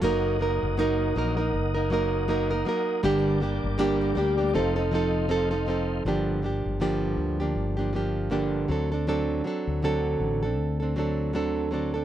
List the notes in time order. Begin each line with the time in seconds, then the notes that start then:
0.02 F#1 F#3 A#3 D#4 A#4 D#5 F#5 D#6
0.39 F#3 A#3 D#4 A#4
0.63 F#1
0.77 F#3 A#3 D#4 A#4
1.15 A#1 F#3 A#3 D#4 A#4
1.37 A#3 D#4 A#4
1.54 F#1
1.75 A#3 D#4 A#4
1.90 F#3 A#3 D#4 A#4
2.28 F#3 A#3 D#4 A#4
2.51 A#3 D#4 A#4
2.65 F#3 A#3 D#4 A#4
3.03 G1 G2 D3 G3 A#3 D4 G4 D5 G5 D6
3.40 G3 A#3 D4 G4
3.64 G1
3.78 G2 D3 G3 A#3 D4 G4
4.02 A#4
4.15 D2 G3 A#3 D4 G4 D5
4.38 G3 A#3 D4 G4
4.53 F1 F3 C4 D#4 A4 C5 D#5 F5 C6
4.76 C4 D#4 A4 D#5
4.91 F3 C4 D#4 A4
5.28 F3 C4 D#4 A4
5.51 C4 D#4 A4
5.66 F3 C4 D#4 A4
6.05 G1 G2 D3 F3 A#3 D4 G4
6.42 F3 A#3 D4 G4
6.66 G1
6.80 G2 D3 F3 A#3 D4 G4
7.17 D2
7.40 F3 A#3 D4 G4
7.55 G1
7.77 F3 A#3 D4 G4
7.93 F3 A#3 D4 G4
8.30 G2 D3 F3 A#3 D4 G4
8.68 D2 F#3 C4 D4 A4
8.92 C4 D4 A4
9.07 D3 F#3 C4 D4 A4
9.44 F#3 C4 D4 A4
9.67 D2
9.82 D3 F#3 C4 D4 A4
10.20 A1
10.43 C4 D4 A4
10.57 D2
10.80 C4 D4 A4
10.96 F#3 C4 D4 A4
11.33 D3 F#3 C4 D4 A4
11.71 F#3 C4 D4 A4
11.94 C4 D4 A4